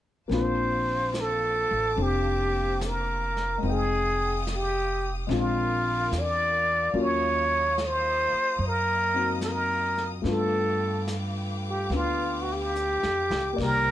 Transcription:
0.28 upright bass A#1, grand piano A#3 C4 D4, string section C5 F5 A5 D6, brush sweep, snare
0.33 grand piano F4, muted trumpet C5
1.14 snare, hi-hat pedal
1.20 muted trumpet A4
1.71 upright bass A1
1.96 upright bass F1, grand piano C4 D4, brush sweep
2.02 muted trumpet G4
2.81 snare, hi-hat pedal
2.88 muted trumpet A#4
3.37 snare
3.58 grand piano G#3
3.62 upright bass F1, grand piano C4 D#4, string section F5 G5 D#6, brush sweep
3.69 muted trumpet G#4, grand piano G5
4.47 snare, hi-hat pedal
4.56 muted trumpet G4
5.27 upright bass A#1, grand piano G#3 C4 D4, string section A#4 D6, brush sweep, snare
5.31 grand piano F4, string section G#5
5.39 muted trumpet F4
6.12 upright bass E2, snare, hi-hat pedal
6.20 muted trumpet D5
6.93 upright bass D#2, grand piano F#3 A#3 C#4 F4, string section D#5 A#5 D#6, brush sweep
7.02 muted trumpet C#5
7.78 snare, hi-hat pedal
7.86 muted trumpet C5
8.33 muted upright bass stroke
8.59 upright bass F#2, brush sweep
8.68 muted trumpet A#4
9.14 grand piano C4 D#4 F#4
9.41 muted trumpet A4, snare, hi-hat pedal
9.48 muted trumpet A#4
9.98 snare
10.22 upright bass G2, grand piano A3 B3 D4, string section B4 F5 G5 D6, brush sweep, snare
10.27 grand piano F4, muted trumpet A4
11.08 snare, hi-hat pedal
11.69 muted trumpet G4
11.90 upright bass D2, grand piano B3 D4, brush sweep, snare
11.95 muted trumpet F4
12.42 muted trumpet F#4
12.53 muted trumpet G4
12.75 hi-hat pedal
13.03 upright bass F2, snare
13.30 upright bass C#2, snare
13.53 grand piano A#3 D5
13.58 upright bass C2, grand piano D#3, muted trumpet A#4, string section C5 D5 A#5, brush sweep, kick, snare, ride
13.64 grand piano G4

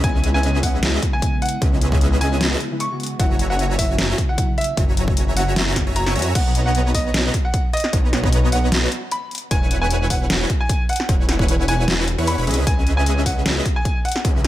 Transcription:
0.02 detuned saw bass C#2, clean electric guitar C#3 E3 G#3 B3, supersaw synth C#4 G#4 B4 D#5 E5, grand piano G#5, kick, closed hi-hat
0.06 clean electric guitar E4
0.24 closed hi-hat
0.34 grand piano G#5
0.43 closed hi-hat
0.61 clean electric guitar C#3 E3 G#3 B3 E4, grand piano F#5, kick, open hi-hat
0.83 snare, closed hi-hat
1.02 kick, closed hi-hat
1.13 grand piano G#5
1.22 kick, closed hi-hat
1.42 grand piano F#5, closed hi-hat
1.46 closed hi-hat
1.49 closed hi-hat
1.60 detuned saw bass C#2, clean electric guitar C#3 E3 G#3 B3, supersaw synth C#4 G#4 B4 D#5 E5, kick, closed hi-hat
1.64 clean electric guitar E4
1.81 closed hi-hat
1.92 kick
2.01 closed hi-hat
2.19 clean electric guitar C#3 E3 G#3 B3, grand piano G#5, open hi-hat
2.23 clean electric guitar E4
2.41 snare, closed hi-hat
2.60 closed hi-hat
2.70 clean electric guitar C#3 E3 G#3 B3 E4
2.80 grand piano C#6, closed hi-hat
2.90 clean electric guitar C#3 E3 G#3 B3 F#4
3.00 closed hi-hat
3.03 closed hi-hat
3.06 closed hi-hat
3.18 detuned saw bass F#1, clean electric guitar C#3 E3 F#3 A#3, supersaw synth F#4 C#5 E5 G#5 A#5, grand piano F#5, kick, closed hi-hat
3.22 clean electric guitar E4
3.39 closed hi-hat
3.50 grand piano F#5
3.59 closed hi-hat
3.77 clean electric guitar C#3 E3 F#3 A#3, grand piano E5, kick, open hi-hat
3.81 clean electric guitar E4
3.99 snare, closed hi-hat
4.18 kick, closed hi-hat
4.29 grand piano F#5
4.38 kick, closed hi-hat
4.58 grand piano E5, closed hi-hat
4.61 closed hi-hat
4.64 closed hi-hat
4.76 detuned saw bass F#1, clean electric guitar C#3 E3 F#3 A#3 E4, supersaw synth F#4 C#5 E5 G#5 A#5, kick, closed hi-hat
4.97 closed hi-hat
5.08 kick
5.17 closed hi-hat
5.35 clean electric guitar C#3 E3 F#3 A#3 E4, grand piano F#5, open hi-hat
5.56 snare, closed hi-hat
5.76 kick, snare, closed hi-hat
5.87 detuned saw bass F#1, supersaw synth F#4 C#5 E5 G#5 A#5
5.96 grand piano A#5, closed hi-hat
6.06 detuned saw bass F#1, supersaw synth F#4 C#5 E5 G#5 C#6, snare
6.16 detuned saw bass F#2, supersaw synth F#4 C#5 E5 G#5 A#5, closed hi-hat
6.19 closed hi-hat
6.22 closed hi-hat
6.35 detuned saw bass B1, supersaw synth B3 B4 C#5 D#5 A#5, grand piano F#5, kick, closed hi-hat, crash
6.55 closed hi-hat
6.66 grand piano F#5
6.75 closed hi-hat
6.95 grand piano D#5, kick, open hi-hat
7.14 snare, closed hi-hat
7.34 kick, closed hi-hat
7.45 grand piano F#5
7.54 kick, closed hi-hat
7.73 grand piano D#5, closed hi-hat
7.77 closed hi-hat
7.80 snare, closed hi-hat
7.93 detuned saw bass B1, supersaw synth B3 B4 C#5 D#5 A#5, kick, closed hi-hat
8.13 snare, closed hi-hat
8.24 kick
8.33 closed hi-hat
8.52 grand piano F#5, open hi-hat
8.72 snare, closed hi-hat
8.92 closed hi-hat
9.12 grand piano B5, closed hi-hat
9.31 closed hi-hat
9.35 closed hi-hat
9.38 closed hi-hat
9.51 detuned saw bass E1, supersaw synth E4 B4 C#5 F#5 G#5, grand piano G#5, kick, closed hi-hat
9.71 closed hi-hat
9.81 grand piano G#5
9.91 closed hi-hat
10.10 grand piano F#5, kick, open hi-hat
10.30 snare, closed hi-hat
10.50 kick, closed hi-hat
10.60 grand piano G#5
10.69 kick, closed hi-hat
10.89 grand piano F#5, closed hi-hat
10.93 closed hi-hat
10.96 closed hi-hat
11.00 snare
11.09 detuned saw bass E1, supersaw synth E4 B4 C#5 F#5 G#5, kick, closed hi-hat
11.29 snare, closed hi-hat
11.39 kick
11.48 closed hi-hat
11.68 grand piano G#5, open hi-hat
11.88 snare, closed hi-hat
12.08 closed hi-hat
12.18 detuned saw bass E2, supersaw synth E4 B4 C#5 F#5 C#6
12.27 grand piano B5, closed hi-hat
12.38 detuned saw bass E1, supersaw synth E4 B4 C#5 F#5 B5
12.47 detuned saw bass C#2, supersaw synth C#4 G#4 B4 D#5 E5, closed hi-hat
12.51 closed hi-hat
12.54 closed hi-hat
12.67 detuned saw bass C#2, supersaw synth C#4 G#4 B4 D#5 E5, grand piano G#5, kick, closed hi-hat
12.87 closed hi-hat
12.97 grand piano G#5
13.06 closed hi-hat
13.26 grand piano F#5, kick, open hi-hat
13.46 snare, closed hi-hat
13.65 kick, closed hi-hat
13.76 grand piano G#5
13.85 kick, closed hi-hat
14.05 grand piano F#5, closed hi-hat
14.09 closed hi-hat
14.12 closed hi-hat
14.16 snare
14.25 detuned saw bass C#2, supersaw synth C#4 G#4 B4 D#5 E5, kick, closed hi-hat

